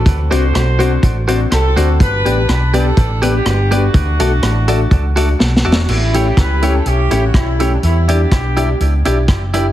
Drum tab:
CC |------------------------|------------------------|------------------------|x-----------------------|
HH |x--x--x--x--x--x--x--x--|x--x--x--x--x--x--x--x--|x--x--x--x--x--x--------|---x--x--x--x--x--x--x--|
SD |------r-----------r-----|------r-----------r-----|------r-----------o-o-o-|------r-----------r-----|
BD |o-----------o-----------|o-----------o-----------|o-----------o-----------|------o-----------o-----|

CC |------------------------|
HH |x--x--x--x--x--x--x--x--|
SD |------r-----------r-----|
BD |------o-----------o-----|